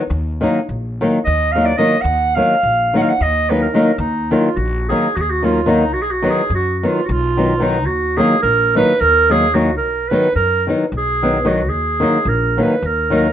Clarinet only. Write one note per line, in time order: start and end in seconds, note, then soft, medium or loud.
1.25 1.53 D#5 loud
1.52 1.67 F5 loud
1.65 1.77 D5 medium
1.77 2.03 D#5 loud
2.01 2.37 F#5 loud
2.35 2.95 F5 loud
2.97 3.03 F#5 loud
3.02 3.11 F5 medium
3.09 3.24 F#5 loud
3.22 3.51 D#5 loud
3.50 3.64 B4 medium
3.62 3.98 A#4 medium
3.99 4.33 D#4 medium
4.32 4.58 F4 medium
4.57 4.89 F#4 medium
4.89 5.18 G#4 loud
5.16 5.23 F#4 loud
5.21 5.32 G#4 medium
5.31 5.46 F#4 loud
5.45 5.71 F4 medium
5.70 5.95 D#4 medium
5.93 6.04 F#4 loud
6.02 6.13 G#4 medium
6.11 6.32 F#4 loud
6.31 6.53 G#4 loud
6.55 6.80 F#4 loud
6.80 6.88 F#4 medium
6.87 7.03 F4 medium
7.06 7.13 F#4 medium
7.12 7.64 F4 loud
7.63 7.88 D#4 loud
7.86 8.19 F#4 loud
8.18 8.42 G#4 loud
8.42 8.73 A#4 loud
8.76 9.02 B4 loud
9.01 9.33 A#4 loud
9.31 9.56 G#4 loud
9.55 9.77 F#4 medium
9.77 10.10 A#4 medium
10.09 10.34 B4 loud
10.36 10.65 A#4 loud
10.98 11.50 G#4 loud
11.48 11.71 F#4 medium
11.70 12.30 G#4 loud
12.28 12.59 A#4 loud
12.60 12.88 B4 medium
12.86 13.13 A#4 medium
13.16 13.33 A#4 medium